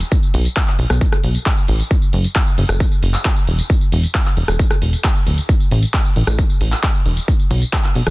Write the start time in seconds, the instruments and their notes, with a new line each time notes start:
0.00 closed hi-hat, tambourine
0.12 kick, closed hi-hat, tambourine
0.23 tambourine
0.34 analog synth bass B1, open hi-hat
0.45 closed hi-hat, tambourine
0.56 kick, clap, closed hi-hat, tambourine
0.68 clap, tambourine
0.79 analog synth bass B1, open hi-hat
0.90 analog synth bass B1, cross-stick, closed hi-hat, tambourine
1.01 kick, closed hi-hat, tambourine
1.12 cross-stick, tambourine
1.24 analog synth bass B1, open hi-hat
1.35 closed hi-hat, tambourine
1.46 kick, clap, closed hi-hat, tambourine
1.57 tambourine
1.68 analog synth bass A1, open hi-hat
1.80 closed hi-hat, tambourine
1.91 kick, closed hi-hat, tambourine
2.02 tambourine
2.13 analog synth bass F#1, open hi-hat
2.24 closed hi-hat, tambourine
2.35 kick, clap, closed hi-hat, tambourine
2.47 tambourine
2.58 analog synth bass F#1, open hi-hat
2.69 analog synth bass F#1, cross-stick, closed hi-hat, tambourine
2.80 kick, closed hi-hat, tambourine
2.92 tambourine
3.03 analog synth bass F#1, open hi-hat
3.14 clap, closed hi-hat, tambourine
3.25 kick, clap, closed hi-hat
3.36 tambourine
3.47 analog synth bass E1, open hi-hat
3.59 closed hi-hat, tambourine
3.70 kick, closed hi-hat, tambourine
3.81 tambourine
3.92 analog synth bass E1, open hi-hat
4.03 closed hi-hat, tambourine
4.15 kick, clap, closed hi-hat, tambourine
4.26 clap, tambourine
4.37 analog synth bass E1, open hi-hat
4.48 analog synth bass E1, cross-stick, closed hi-hat, tambourine
4.59 kick, closed hi-hat, tambourine
4.71 cross-stick, tambourine
4.82 analog synth bass E1, open hi-hat
4.93 closed hi-hat, tambourine
5.04 kick, clap, closed hi-hat, tambourine
5.15 tambourine
5.26 analog synth bass D1, open hi-hat
5.38 closed hi-hat, tambourine
5.49 kick, closed hi-hat, tambourine
5.60 tambourine
5.71 analog synth bass A1, open hi-hat
5.83 closed hi-hat, tambourine
5.94 kick, clap, closed hi-hat
6.05 tambourine
6.16 analog synth bass A1, open hi-hat
6.27 analog synth bass A1, cross-stick, closed hi-hat, tambourine
6.38 kick, closed hi-hat, tambourine
6.50 tambourine
6.61 analog synth bass A1, open hi-hat
6.72 clap, closed hi-hat, tambourine
6.83 kick, clap, closed hi-hat, tambourine
6.94 tambourine
7.06 analog synth bass E1, open hi-hat
7.17 closed hi-hat, tambourine
7.28 kick, closed hi-hat, tambourine
7.39 tambourine
7.51 analog synth bass B1, open hi-hat
7.62 closed hi-hat, tambourine
7.73 kick, clap, closed hi-hat
7.84 clap, tambourine
7.95 analog synth bass B1, open hi-hat
8.07 analog synth bass E1, cross-stick, closed hi-hat, tambourine